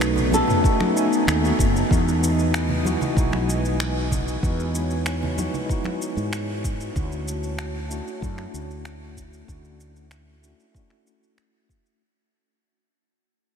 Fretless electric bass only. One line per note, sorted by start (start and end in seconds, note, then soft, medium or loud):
0.00 0.41 B1 loud
1.27 1.50 D#2 medium
1.59 1.82 F#1 medium
1.91 2.94 E2 loud
3.16 4.36 B1 medium
4.43 5.47 E2 medium
6.17 6.89 G#2 medium
6.96 7.99 D2 medium
8.22 8.45 F#2 medium
8.54 9.42 D2 medium
9.48 10.52 D2 medium